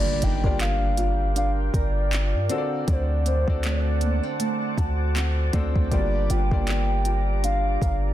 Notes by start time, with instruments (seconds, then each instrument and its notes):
Already playing: 808-style bass G1, nylon-string guitar G3, grand piano A#3 D4 F4 G4 D5, ambient pad A#4 F5 G5 D6, soft synth lead D5, impact
0.22 808-style bass G1, nylon-string guitar D#4, soft synth lead G5, closed hi-hat
0.44 808-style bass G1, grand piano A#3 D4 F4 G4 D5, nylon-string guitar F4, kick
0.60 nylon-string guitar D4, soft synth lead F5, clap, closed hi-hat
0.97 nylon-string guitar F4, closed hi-hat
1.36 nylon-string guitar D4, soft synth lead F5, closed hi-hat
1.74 808-style bass G1, nylon-string guitar A#4, soft synth lead D5, kick, closed hi-hat
2.12 nylon-string guitar F4, clap, closed hi-hat
2.34 808-style bass G2
2.49 nylon-string guitar D3, grand piano C4 D4 F#4 A4 C5, ambient pad C5 F#5 A5, closed hi-hat
2.58 grand piano D5
2.87 808-style bass D2, nylon-string guitar D3, soft synth lead C5, kick, closed hi-hat
3.25 nylon-string guitar C4, soft synth lead C5, closed hi-hat
3.47 808-style bass D2, grand piano C4 D4 F#4 A4 D5, kick
3.63 nylon-string guitar A3, soft synth lead D5, clap, closed hi-hat
4.01 nylon-string guitar A#3, closed hi-hat
4.23 nylon-string guitar C4
4.39 nylon-string guitar A3, closed hi-hat
4.77 808-style bass D2, nylon-string guitar F#4, grand piano A5, kick, closed hi-hat
5.15 nylon-string guitar C4, grand piano F#5, clap, closed hi-hat
5.53 808-style bass D2, nylon-string guitar A3, grand piano C4 D4 F#4 A4 C5 D5, kick, closed hi-hat
5.76 808-style bass D2, kick
5.91 808-style bass G1, nylon-string guitar G3, grand piano A#3 D4 F4 G4 D5, ambient pad G4 D5 A#5, soft synth lead D5, kick, closed hi-hat
6.29 808-style bass G1, nylon-string guitar F4, soft synth lead G5, closed hi-hat
6.51 808-style bass G1, grand piano A#3 D4 F4 G4 D5, kick
6.67 nylon-string guitar D4, clap, closed hi-hat
7.05 nylon-string guitar F4, closed hi-hat
7.43 nylon-string guitar D4, soft synth lead F5, closed hi-hat
7.81 808-style bass G1, nylon-string guitar A#4, soft synth lead F5, kick, closed hi-hat